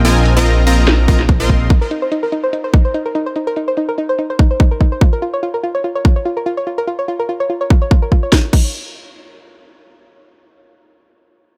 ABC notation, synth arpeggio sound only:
X:1
M:4/4
L:1/16
Q:"Swing 16ths" 1/4=145
K:Dblyd
V:1 name="Synth arpeggio sound"
z16 | E B E c E B E c E c E c E B E c | E B E c E B E c E c E c E B E c | F B F d F B F d F d F d F B F d |
F B F d F B F d F d F d F B F d | E z E z12 z | z16 |]